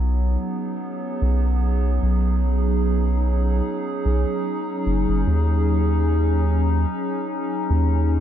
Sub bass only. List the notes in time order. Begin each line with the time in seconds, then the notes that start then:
Already playing: B1
1.22 B1
2.03 B1
4.05 B1
4.86 F#1
5.09 F#1
5.27 D#2
7.70 D#2